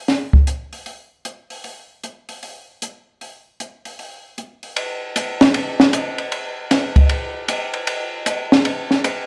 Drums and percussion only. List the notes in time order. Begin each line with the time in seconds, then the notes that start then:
0.08 snare, open hi-hat
0.33 kick
0.47 closed hi-hat
0.73 open hi-hat
0.86 open hi-hat
1.25 closed hi-hat
1.50 open hi-hat
1.64 open hi-hat
2.04 closed hi-hat
2.29 open hi-hat
2.43 open hi-hat
2.82 closed hi-hat
3.21 open hi-hat
3.60 closed hi-hat
3.85 open hi-hat
3.99 open hi-hat
4.38 closed hi-hat
4.63 open hi-hat
4.76 ride
5.16 hi-hat pedal, ride
5.41 snare, ride
5.54 ride
5.80 snare
5.93 hi-hat pedal, ride
6.18 ride
6.32 ride
6.71 snare, hi-hat pedal, ride
6.96 kick, ride
7.09 ride
7.48 hi-hat pedal, ride
7.74 ride
7.87 ride
8.26 hi-hat pedal, ride
8.52 snare
8.65 ride
8.91 snare
9.04 hi-hat pedal, ride